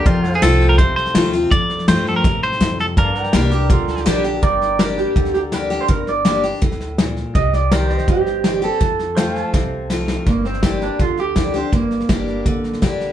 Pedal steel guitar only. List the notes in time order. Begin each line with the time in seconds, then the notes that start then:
0.06 A#4 D5 G5
0.26 A4
0.32 C5 F5
2.98 A4 D5 F5
3.18 A#4
3.25 G5
4.43 A#4 D5 G5
7.73 A#4 D5 G5
7.93 D#5
7.98 C5
9.17 C5 F5 G5
9.44 A5